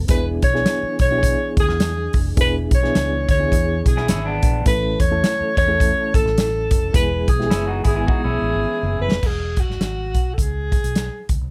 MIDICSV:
0, 0, Header, 1, 8, 480
1, 0, Start_track
1, 0, Key_signature, 4, "major"
1, 0, Tempo, 571429
1, 80, Time_signature, 4, 2, 24, 8
1, 9664, End_track
2, 0, Start_track
2, 0, Title_t, "Alto saxophone"
2, 0, Program_c, 0, 65
2, 87, Note_on_c, 0, 71, 94
2, 213, Note_off_c, 0, 71, 0
2, 369, Note_on_c, 0, 73, 111
2, 812, Note_off_c, 0, 73, 0
2, 852, Note_on_c, 0, 73, 117
2, 1293, Note_off_c, 0, 73, 0
2, 1342, Note_on_c, 0, 68, 101
2, 1973, Note_off_c, 0, 68, 0
2, 2022, Note_on_c, 0, 71, 98
2, 2144, Note_off_c, 0, 71, 0
2, 2305, Note_on_c, 0, 73, 106
2, 2740, Note_off_c, 0, 73, 0
2, 2775, Note_on_c, 0, 73, 103
2, 3214, Note_off_c, 0, 73, 0
2, 3255, Note_on_c, 0, 68, 83
2, 3705, Note_off_c, 0, 68, 0
2, 3926, Note_on_c, 0, 71, 103
2, 4206, Note_on_c, 0, 73, 115
2, 4219, Note_off_c, 0, 71, 0
2, 4682, Note_off_c, 0, 73, 0
2, 4688, Note_on_c, 0, 73, 127
2, 5129, Note_off_c, 0, 73, 0
2, 5166, Note_on_c, 0, 69, 111
2, 5804, Note_off_c, 0, 69, 0
2, 5841, Note_on_c, 0, 71, 101
2, 6102, Note_off_c, 0, 71, 0
2, 6127, Note_on_c, 0, 68, 90
2, 6569, Note_off_c, 0, 68, 0
2, 6613, Note_on_c, 0, 68, 96
2, 7533, Note_off_c, 0, 68, 0
2, 7573, Note_on_c, 0, 71, 97
2, 7782, Note_on_c, 0, 68, 98
2, 7794, Note_off_c, 0, 71, 0
2, 8063, Note_on_c, 0, 66, 93
2, 8076, Note_off_c, 0, 68, 0
2, 8684, Note_on_c, 0, 69, 54
2, 8697, Note_off_c, 0, 66, 0
2, 8750, Note_on_c, 0, 68, 97
2, 8762, Note_off_c, 0, 69, 0
2, 9501, Note_off_c, 0, 68, 0
2, 9664, End_track
3, 0, Start_track
3, 0, Title_t, "Clean electric guitar"
3, 0, Program_c, 1, 27
3, 3336, Note_on_c, 1, 68, 82
3, 3341, Note_on_c, 1, 64, 66
3, 3426, Note_off_c, 1, 64, 0
3, 3429, Note_off_c, 1, 68, 0
3, 3436, Note_on_c, 1, 64, 93
3, 3440, Note_on_c, 1, 61, 78
3, 3570, Note_off_c, 1, 64, 0
3, 3572, Note_off_c, 1, 61, 0
3, 3576, Note_on_c, 1, 62, 84
3, 3581, Note_on_c, 1, 59, 67
3, 3897, Note_off_c, 1, 62, 0
3, 3899, Note_off_c, 1, 59, 0
3, 6304, Note_on_c, 1, 64, 75
3, 6310, Note_on_c, 1, 61, 64
3, 6443, Note_off_c, 1, 64, 0
3, 6446, Note_off_c, 1, 61, 0
3, 6446, Note_on_c, 1, 66, 83
3, 6451, Note_on_c, 1, 63, 64
3, 6581, Note_off_c, 1, 66, 0
3, 6584, Note_on_c, 1, 68, 80
3, 6588, Note_off_c, 1, 63, 0
3, 6591, Note_on_c, 1, 64, 75
3, 6672, Note_off_c, 1, 68, 0
3, 6678, Note_off_c, 1, 64, 0
3, 6682, Note_on_c, 1, 68, 89
3, 6688, Note_on_c, 1, 64, 78
3, 6776, Note_off_c, 1, 68, 0
3, 6780, Note_on_c, 1, 66, 83
3, 6781, Note_off_c, 1, 64, 0
3, 6784, Note_on_c, 1, 63, 64
3, 6920, Note_off_c, 1, 66, 0
3, 6923, Note_on_c, 1, 64, 71
3, 6924, Note_off_c, 1, 63, 0
3, 6930, Note_on_c, 1, 61, 57
3, 7617, Note_off_c, 1, 64, 0
3, 7620, Note_off_c, 1, 61, 0
3, 9664, End_track
4, 0, Start_track
4, 0, Title_t, "Reed electric piano"
4, 0, Program_c, 2, 4
4, 64, Note_on_c, 2, 59, 74
4, 69, Note_on_c, 2, 62, 64
4, 73, Note_on_c, 2, 64, 69
4, 76, Note_on_c, 2, 68, 81
4, 368, Note_off_c, 2, 59, 0
4, 370, Note_off_c, 2, 62, 0
4, 372, Note_off_c, 2, 64, 0
4, 374, Note_off_c, 2, 68, 0
4, 449, Note_on_c, 2, 59, 72
4, 454, Note_on_c, 2, 62, 69
4, 456, Note_on_c, 2, 64, 66
4, 463, Note_on_c, 2, 68, 90
4, 813, Note_off_c, 2, 59, 0
4, 815, Note_off_c, 2, 62, 0
4, 816, Note_off_c, 2, 64, 0
4, 819, Note_off_c, 2, 68, 0
4, 929, Note_on_c, 2, 59, 69
4, 935, Note_on_c, 2, 62, 70
4, 937, Note_on_c, 2, 64, 70
4, 939, Note_on_c, 2, 67, 63
4, 984, Note_off_c, 2, 67, 0
4, 994, Note_on_c, 2, 68, 81
4, 1605, Note_off_c, 2, 59, 0
4, 1608, Note_off_c, 2, 62, 0
4, 1609, Note_off_c, 2, 64, 0
4, 1637, Note_off_c, 2, 68, 0
4, 1989, Note_on_c, 2, 59, 72
4, 1991, Note_on_c, 2, 62, 68
4, 1995, Note_on_c, 2, 64, 67
4, 1997, Note_on_c, 2, 68, 81
4, 2289, Note_off_c, 2, 59, 0
4, 2290, Note_off_c, 2, 62, 0
4, 2292, Note_off_c, 2, 64, 0
4, 2292, Note_off_c, 2, 68, 0
4, 2374, Note_on_c, 2, 59, 83
4, 2376, Note_on_c, 2, 62, 75
4, 2378, Note_on_c, 2, 64, 78
4, 2382, Note_on_c, 2, 68, 86
4, 2733, Note_off_c, 2, 59, 0
4, 2735, Note_off_c, 2, 62, 0
4, 2736, Note_off_c, 2, 64, 0
4, 2737, Note_off_c, 2, 68, 0
4, 2850, Note_on_c, 2, 59, 68
4, 2853, Note_on_c, 2, 62, 64
4, 2856, Note_on_c, 2, 64, 68
4, 2857, Note_on_c, 2, 68, 85
4, 3525, Note_off_c, 2, 59, 0
4, 3526, Note_off_c, 2, 62, 0
4, 3527, Note_off_c, 2, 64, 0
4, 3528, Note_off_c, 2, 68, 0
4, 3907, Note_on_c, 2, 57, 71
4, 3912, Note_on_c, 2, 61, 67
4, 3916, Note_on_c, 2, 64, 75
4, 3921, Note_on_c, 2, 69, 78
4, 4207, Note_off_c, 2, 57, 0
4, 4209, Note_off_c, 2, 61, 0
4, 4211, Note_off_c, 2, 64, 0
4, 4214, Note_off_c, 2, 69, 0
4, 4294, Note_on_c, 2, 57, 81
4, 4297, Note_on_c, 2, 61, 72
4, 4299, Note_on_c, 2, 64, 73
4, 4303, Note_on_c, 2, 69, 89
4, 4653, Note_off_c, 2, 57, 0
4, 4654, Note_off_c, 2, 61, 0
4, 4655, Note_off_c, 2, 64, 0
4, 4657, Note_off_c, 2, 69, 0
4, 4769, Note_on_c, 2, 57, 81
4, 4771, Note_on_c, 2, 61, 69
4, 4773, Note_on_c, 2, 64, 68
4, 4775, Note_on_c, 2, 68, 67
4, 4819, Note_off_c, 2, 68, 0
4, 4830, Note_on_c, 2, 69, 84
4, 5443, Note_off_c, 2, 57, 0
4, 5444, Note_off_c, 2, 61, 0
4, 5445, Note_off_c, 2, 64, 0
4, 5474, Note_off_c, 2, 69, 0
4, 5826, Note_on_c, 2, 56, 74
4, 5828, Note_on_c, 2, 59, 69
4, 5831, Note_on_c, 2, 64, 68
4, 5834, Note_on_c, 2, 68, 85
4, 6126, Note_off_c, 2, 56, 0
4, 6127, Note_off_c, 2, 59, 0
4, 6128, Note_off_c, 2, 64, 0
4, 6130, Note_off_c, 2, 68, 0
4, 6208, Note_on_c, 2, 56, 76
4, 6209, Note_on_c, 2, 59, 72
4, 6212, Note_on_c, 2, 64, 76
4, 6216, Note_on_c, 2, 67, 69
4, 6260, Note_off_c, 2, 67, 0
4, 6271, Note_on_c, 2, 68, 89
4, 6570, Note_off_c, 2, 56, 0
4, 6570, Note_off_c, 2, 59, 0
4, 6572, Note_off_c, 2, 64, 0
4, 6601, Note_off_c, 2, 68, 0
4, 6688, Note_on_c, 2, 56, 74
4, 6693, Note_on_c, 2, 59, 63
4, 6696, Note_on_c, 2, 64, 67
4, 6698, Note_on_c, 2, 68, 81
4, 7364, Note_off_c, 2, 56, 0
4, 7367, Note_off_c, 2, 59, 0
4, 7368, Note_off_c, 2, 64, 0
4, 7369, Note_off_c, 2, 68, 0
4, 9664, End_track
5, 0, Start_track
5, 0, Title_t, "Tonewheel organ"
5, 0, Program_c, 3, 16
5, 70, Note_on_c, 3, 62, 62
5, 73, Note_on_c, 3, 52, 67
5, 73, Note_on_c, 3, 68, 70
5, 3875, Note_off_c, 3, 62, 0
5, 3877, Note_off_c, 3, 68, 0
5, 3910, Note_on_c, 3, 61, 60
5, 3914, Note_on_c, 3, 69, 74
5, 5812, Note_off_c, 3, 61, 0
5, 5814, Note_off_c, 3, 69, 0
5, 5822, Note_on_c, 3, 68, 76
5, 5824, Note_on_c, 3, 59, 59
5, 7718, Note_off_c, 3, 52, 0
5, 7730, Note_off_c, 3, 68, 0
5, 7731, Note_off_c, 3, 59, 0
5, 9664, End_track
6, 0, Start_track
6, 0, Title_t, "Fingered electric bass"
6, 0, Program_c, 4, 33
6, 77, Note_on_c, 4, 28, 94
6, 321, Note_off_c, 4, 28, 0
6, 358, Note_on_c, 4, 35, 76
6, 527, Note_off_c, 4, 35, 0
6, 838, Note_on_c, 4, 35, 102
6, 1128, Note_off_c, 4, 35, 0
6, 1319, Note_on_c, 4, 38, 88
6, 1413, Note_off_c, 4, 38, 0
6, 1413, Note_on_c, 4, 40, 99
6, 1742, Note_off_c, 4, 40, 0
6, 1797, Note_on_c, 4, 29, 99
6, 1966, Note_off_c, 4, 29, 0
6, 1992, Note_on_c, 4, 28, 102
6, 2236, Note_off_c, 4, 28, 0
6, 2281, Note_on_c, 4, 35, 93
6, 2448, Note_off_c, 4, 35, 0
6, 2484, Note_on_c, 4, 37, 90
6, 2723, Note_off_c, 4, 37, 0
6, 2764, Note_on_c, 4, 38, 101
6, 2929, Note_off_c, 4, 38, 0
6, 2956, Note_on_c, 4, 40, 113
6, 3198, Note_off_c, 4, 40, 0
6, 3242, Note_on_c, 4, 35, 99
6, 3440, Note_on_c, 4, 32, 92
6, 3453, Note_off_c, 4, 35, 0
6, 3681, Note_off_c, 4, 32, 0
6, 3723, Note_on_c, 4, 34, 104
6, 3888, Note_off_c, 4, 34, 0
6, 3915, Note_on_c, 4, 33, 113
6, 4157, Note_off_c, 4, 33, 0
6, 4200, Note_on_c, 4, 40, 100
6, 4366, Note_off_c, 4, 40, 0
6, 4684, Note_on_c, 4, 40, 92
6, 4970, Note_off_c, 4, 40, 0
6, 5161, Note_on_c, 4, 32, 91
6, 5243, Note_off_c, 4, 32, 0
6, 5254, Note_on_c, 4, 33, 99
6, 5638, Note_off_c, 4, 33, 0
6, 5638, Note_on_c, 4, 29, 100
6, 5805, Note_off_c, 4, 29, 0
6, 5832, Note_on_c, 4, 28, 113
6, 6075, Note_off_c, 4, 28, 0
6, 6115, Note_on_c, 4, 35, 88
6, 6283, Note_off_c, 4, 35, 0
6, 6306, Note_on_c, 4, 30, 87
6, 6552, Note_off_c, 4, 30, 0
6, 6595, Note_on_c, 4, 32, 94
6, 6763, Note_off_c, 4, 32, 0
6, 6931, Note_on_c, 4, 35, 96
6, 7055, Note_off_c, 4, 35, 0
6, 7073, Note_on_c, 4, 33, 89
6, 7159, Note_off_c, 4, 33, 0
6, 7174, Note_on_c, 4, 32, 92
6, 7258, Note_off_c, 4, 32, 0
6, 7416, Note_on_c, 4, 30, 92
6, 7538, Note_off_c, 4, 30, 0
6, 7557, Note_on_c, 4, 30, 101
6, 7641, Note_off_c, 4, 30, 0
6, 7754, Note_on_c, 4, 28, 90
6, 8081, Note_off_c, 4, 28, 0
6, 8143, Note_on_c, 4, 32, 77
6, 8224, Note_off_c, 4, 32, 0
6, 8240, Note_on_c, 4, 32, 76
6, 8524, Note_off_c, 4, 32, 0
6, 8524, Note_on_c, 4, 35, 85
6, 8691, Note_off_c, 4, 35, 0
6, 8721, Note_on_c, 4, 37, 99
6, 9047, Note_off_c, 4, 37, 0
6, 9106, Note_on_c, 4, 35, 83
6, 9310, Note_off_c, 4, 35, 0
6, 9487, Note_on_c, 4, 37, 84
6, 9570, Note_off_c, 4, 37, 0
6, 9585, Note_on_c, 4, 36, 84
6, 9664, Note_off_c, 4, 36, 0
6, 9664, End_track
7, 0, Start_track
7, 0, Title_t, "Muted fingered electric bass strokes"
7, 696, Note_on_c, 9, 29, 48
7, 780, Note_off_c, 9, 29, 0
7, 4540, Note_on_c, 9, 29, 54
7, 4624, Note_off_c, 9, 29, 0
7, 9664, End_track
8, 0, Start_track
8, 0, Title_t, "Drums"
8, 69, Note_on_c, 9, 42, 101
8, 74, Note_on_c, 9, 36, 112
8, 153, Note_off_c, 9, 42, 0
8, 158, Note_off_c, 9, 36, 0
8, 356, Note_on_c, 9, 42, 79
8, 359, Note_on_c, 9, 36, 98
8, 440, Note_off_c, 9, 42, 0
8, 443, Note_off_c, 9, 36, 0
8, 463, Note_on_c, 9, 38, 32
8, 547, Note_off_c, 9, 38, 0
8, 552, Note_on_c, 9, 38, 111
8, 552, Note_on_c, 9, 42, 81
8, 636, Note_off_c, 9, 38, 0
8, 636, Note_off_c, 9, 42, 0
8, 831, Note_on_c, 9, 42, 78
8, 837, Note_on_c, 9, 36, 89
8, 915, Note_off_c, 9, 42, 0
8, 921, Note_off_c, 9, 36, 0
8, 1032, Note_on_c, 9, 36, 98
8, 1037, Note_on_c, 9, 42, 86
8, 1116, Note_off_c, 9, 36, 0
8, 1121, Note_off_c, 9, 42, 0
8, 1318, Note_on_c, 9, 36, 105
8, 1319, Note_on_c, 9, 42, 76
8, 1402, Note_off_c, 9, 36, 0
8, 1403, Note_off_c, 9, 42, 0
8, 1417, Note_on_c, 9, 38, 36
8, 1501, Note_off_c, 9, 38, 0
8, 1512, Note_on_c, 9, 42, 95
8, 1516, Note_on_c, 9, 38, 116
8, 1596, Note_off_c, 9, 42, 0
8, 1600, Note_off_c, 9, 38, 0
8, 1789, Note_on_c, 9, 46, 68
8, 1798, Note_on_c, 9, 36, 100
8, 1873, Note_off_c, 9, 46, 0
8, 1882, Note_off_c, 9, 36, 0
8, 1992, Note_on_c, 9, 36, 121
8, 1992, Note_on_c, 9, 42, 101
8, 2076, Note_off_c, 9, 36, 0
8, 2076, Note_off_c, 9, 42, 0
8, 2278, Note_on_c, 9, 36, 104
8, 2278, Note_on_c, 9, 42, 78
8, 2362, Note_off_c, 9, 36, 0
8, 2362, Note_off_c, 9, 42, 0
8, 2387, Note_on_c, 9, 38, 30
8, 2471, Note_off_c, 9, 38, 0
8, 2480, Note_on_c, 9, 38, 104
8, 2481, Note_on_c, 9, 42, 84
8, 2564, Note_off_c, 9, 38, 0
8, 2565, Note_off_c, 9, 42, 0
8, 2760, Note_on_c, 9, 36, 89
8, 2761, Note_on_c, 9, 42, 77
8, 2844, Note_off_c, 9, 36, 0
8, 2845, Note_off_c, 9, 42, 0
8, 2956, Note_on_c, 9, 36, 92
8, 2963, Note_on_c, 9, 42, 87
8, 3040, Note_off_c, 9, 36, 0
8, 3047, Note_off_c, 9, 42, 0
8, 3241, Note_on_c, 9, 36, 98
8, 3243, Note_on_c, 9, 42, 81
8, 3325, Note_off_c, 9, 36, 0
8, 3327, Note_off_c, 9, 42, 0
8, 3336, Note_on_c, 9, 38, 38
8, 3420, Note_off_c, 9, 38, 0
8, 3431, Note_on_c, 9, 42, 107
8, 3435, Note_on_c, 9, 38, 118
8, 3515, Note_off_c, 9, 42, 0
8, 3519, Note_off_c, 9, 38, 0
8, 3718, Note_on_c, 9, 42, 93
8, 3720, Note_on_c, 9, 36, 105
8, 3802, Note_off_c, 9, 42, 0
8, 3804, Note_off_c, 9, 36, 0
8, 3912, Note_on_c, 9, 42, 104
8, 3914, Note_on_c, 9, 36, 107
8, 3996, Note_off_c, 9, 42, 0
8, 3998, Note_off_c, 9, 36, 0
8, 4198, Note_on_c, 9, 36, 93
8, 4199, Note_on_c, 9, 42, 80
8, 4282, Note_off_c, 9, 36, 0
8, 4283, Note_off_c, 9, 42, 0
8, 4400, Note_on_c, 9, 38, 108
8, 4400, Note_on_c, 9, 42, 84
8, 4484, Note_off_c, 9, 38, 0
8, 4484, Note_off_c, 9, 42, 0
8, 4680, Note_on_c, 9, 36, 88
8, 4682, Note_on_c, 9, 42, 75
8, 4764, Note_off_c, 9, 36, 0
8, 4766, Note_off_c, 9, 42, 0
8, 4874, Note_on_c, 9, 36, 100
8, 4880, Note_on_c, 9, 42, 91
8, 4958, Note_off_c, 9, 36, 0
8, 4964, Note_off_c, 9, 42, 0
8, 5160, Note_on_c, 9, 36, 106
8, 5165, Note_on_c, 9, 42, 73
8, 5244, Note_off_c, 9, 36, 0
8, 5249, Note_off_c, 9, 42, 0
8, 5261, Note_on_c, 9, 38, 38
8, 5345, Note_off_c, 9, 38, 0
8, 5356, Note_on_c, 9, 42, 96
8, 5360, Note_on_c, 9, 38, 120
8, 5440, Note_off_c, 9, 42, 0
8, 5444, Note_off_c, 9, 38, 0
8, 5635, Note_on_c, 9, 42, 93
8, 5637, Note_on_c, 9, 36, 99
8, 5719, Note_off_c, 9, 42, 0
8, 5721, Note_off_c, 9, 36, 0
8, 5831, Note_on_c, 9, 36, 116
8, 5834, Note_on_c, 9, 42, 108
8, 5915, Note_off_c, 9, 36, 0
8, 5918, Note_off_c, 9, 42, 0
8, 6114, Note_on_c, 9, 42, 80
8, 6115, Note_on_c, 9, 36, 100
8, 6198, Note_off_c, 9, 42, 0
8, 6199, Note_off_c, 9, 36, 0
8, 6221, Note_on_c, 9, 38, 33
8, 6305, Note_off_c, 9, 38, 0
8, 6311, Note_on_c, 9, 38, 113
8, 6312, Note_on_c, 9, 42, 79
8, 6395, Note_off_c, 9, 38, 0
8, 6396, Note_off_c, 9, 42, 0
8, 6590, Note_on_c, 9, 42, 81
8, 6594, Note_on_c, 9, 36, 86
8, 6674, Note_off_c, 9, 42, 0
8, 6678, Note_off_c, 9, 36, 0
8, 6789, Note_on_c, 9, 36, 95
8, 6873, Note_off_c, 9, 36, 0
8, 7657, Note_on_c, 9, 38, 110
8, 7741, Note_off_c, 9, 38, 0
8, 7752, Note_on_c, 9, 36, 101
8, 7752, Note_on_c, 9, 49, 90
8, 7836, Note_off_c, 9, 36, 0
8, 7836, Note_off_c, 9, 49, 0
8, 8036, Note_on_c, 9, 42, 72
8, 8039, Note_on_c, 9, 36, 92
8, 8120, Note_off_c, 9, 42, 0
8, 8123, Note_off_c, 9, 36, 0
8, 8152, Note_on_c, 9, 38, 33
8, 8236, Note_off_c, 9, 38, 0
8, 8239, Note_on_c, 9, 38, 97
8, 8240, Note_on_c, 9, 42, 76
8, 8323, Note_off_c, 9, 38, 0
8, 8324, Note_off_c, 9, 42, 0
8, 8522, Note_on_c, 9, 42, 71
8, 8523, Note_on_c, 9, 36, 80
8, 8606, Note_off_c, 9, 42, 0
8, 8607, Note_off_c, 9, 36, 0
8, 8719, Note_on_c, 9, 36, 86
8, 8725, Note_on_c, 9, 42, 83
8, 8803, Note_off_c, 9, 36, 0
8, 8809, Note_off_c, 9, 42, 0
8, 9005, Note_on_c, 9, 36, 93
8, 9009, Note_on_c, 9, 42, 71
8, 9089, Note_off_c, 9, 36, 0
8, 9093, Note_off_c, 9, 42, 0
8, 9107, Note_on_c, 9, 42, 60
8, 9191, Note_off_c, 9, 42, 0
8, 9202, Note_on_c, 9, 42, 89
8, 9206, Note_on_c, 9, 38, 113
8, 9286, Note_off_c, 9, 42, 0
8, 9290, Note_off_c, 9, 38, 0
8, 9484, Note_on_c, 9, 42, 92
8, 9486, Note_on_c, 9, 36, 88
8, 9568, Note_off_c, 9, 42, 0
8, 9570, Note_off_c, 9, 36, 0
8, 9664, End_track
0, 0, End_of_file